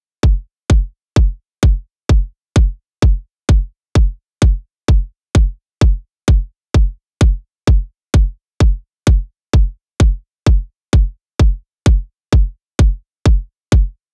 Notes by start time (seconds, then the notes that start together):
0.23 kick
0.70 kick
1.16 kick
1.63 kick
2.09 kick
2.56 kick
3.02 kick
3.49 kick
3.95 kick
4.42 kick
4.88 kick
5.35 kick
5.81 kick
6.28 kick
6.74 kick
7.21 kick
7.67 kick
8.14 kick
8.60 kick
9.07 kick
9.53 kick
10.00 kick
10.46 kick
10.93 kick
11.39 kick
11.86 kick
12.33 kick
12.79 kick
13.26 kick
13.72 kick